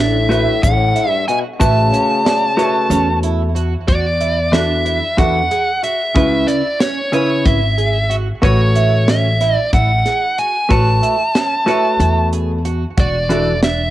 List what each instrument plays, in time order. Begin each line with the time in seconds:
Already playing: upright bass A1
0.00 trombone A2, twelve-string acoustic guitar D4, lead electric guitar E5
0.29 hollow-body jazz guitar A3 F#4 B4 E5, twelve-string acoustic guitar E4, closed hi-hat
0.63 upright bass A1, trombone A2, twelve-string acoustic guitar C#4, lead electric guitar F#5, kick, closed hi-hat, shaker
0.95 twelve-string acoustic guitar E4, closed hi-hat
1.09 trombone G2, lead electric guitar E5
1.28 trombone B2, twelve-string acoustic guitar F#4, lead electric guitar G#5, closed hi-hat
1.60 upright bass A1, trombone C#3, hollow-body jazz guitar A3 F#4 B4 E5, twelve-string acoustic guitar E4, lead electric guitar A5, kick, closed hi-hat, shaker
1.93 twelve-string acoustic guitar C#4, closed hi-hat
2.25 twelve-string acoustic guitar D5, snare, closed hi-hat
2.57 hollow-body jazz guitar A3 F#4 B4 C#5, twelve-string acoustic guitar E4, closed hi-hat
2.90 upright bass E2, twelve-string acoustic guitar C#4, closed hi-hat, shaker
3.23 twelve-string acoustic guitar E4, closed hi-hat
3.55 twelve-string acoustic guitar F#4, closed hi-hat
3.88 upright bass E2, twelve-string acoustic guitar F#4, lead electric guitar D5, kick, closed hi-hat
4.21 twelve-string acoustic guitar E4, closed hi-hat
4.52 hollow-body jazz guitar E3 D4 F#4 A4, twelve-string acoustic guitar D4, lead electric guitar E5, snare, closed hi-hat
4.85 twelve-string acoustic guitar E4, closed hi-hat
5.17 upright bass E2, hollow-body jazz guitar E3 D4 F#4 A4, twelve-string acoustic guitar E4, lead electric guitar F#5, kick, closed hi-hat
5.51 twelve-string acoustic guitar G#4, closed hi-hat
5.83 twelve-string acoustic guitar F#4, lead electric guitar E5, closed hi-hat
6.15 upright bass C#2, hollow-body jazz guitar C#3 C#4 E4 B4, twelve-string acoustic guitar F#4, kick, closed hi-hat
6.48 twelve-string acoustic guitar E4, lead electric guitar D5, closed hi-hat
6.80 twelve-string acoustic guitar C#4, lead electric guitar C#5, snare, closed hi-hat
7.12 hollow-body jazz guitar C#3 C#4 E4 B4, twelve-string acoustic guitar E4, lead electric guitar C#5, closed hi-hat
7.46 upright bass G#1, twelve-string acoustic guitar E4, lead electric guitar E5, kick, closed hi-hat
7.78 twelve-string acoustic guitar G#4, closed hi-hat
8.10 twelve-string acoustic guitar F#4, closed hi-hat
8.42 upright bass A1, hollow-body jazz guitar A3 F#4 B4 C#5, twelve-string acoustic guitar F#4, lead electric guitar C#5, kick, closed hi-hat
8.75 twelve-string acoustic guitar E4, closed hi-hat
9.08 twelve-string acoustic guitar C#4, lead electric guitar E5, snare, closed hi-hat
9.41 twelve-string acoustic guitar E4, snare, closed hi-hat
9.55 lead electric guitar D5
9.73 upright bass A1, twelve-string acoustic guitar E4, lead electric guitar F#5, kick, closed hi-hat
10.06 twelve-string acoustic guitar G#4, snare, closed hi-hat
10.38 twelve-string acoustic guitar F#4, lead electric guitar G#5, closed hi-hat
10.69 upright bass A1, hollow-body jazz guitar A3 F#4 B4 C#5, twelve-string acoustic guitar F#4, lead electric guitar A5, kick, closed hi-hat
11.02 twelve-string acoustic guitar E4, closed hi-hat
11.35 twelve-string acoustic guitar C#4, snare, closed hi-hat
11.66 hollow-body jazz guitar A3 F#4 B4 C#5, twelve-string acoustic guitar E4, closed hi-hat
12.00 upright bass E2, twelve-string acoustic guitar E4, closed hi-hat
12.33 twelve-string acoustic guitar G#4, closed hi-hat
12.65 twelve-string acoustic guitar F#4, closed hi-hat
12.97 upright bass E1, twelve-string acoustic guitar F#4, lead electric guitar D5, kick, closed hi-hat
13.29 hollow-body jazz guitar E3 D4 F#4 A4, twelve-string acoustic guitar E4, closed hi-hat
13.63 twelve-string acoustic guitar D4, lead electric guitar E5, snare, closed hi-hat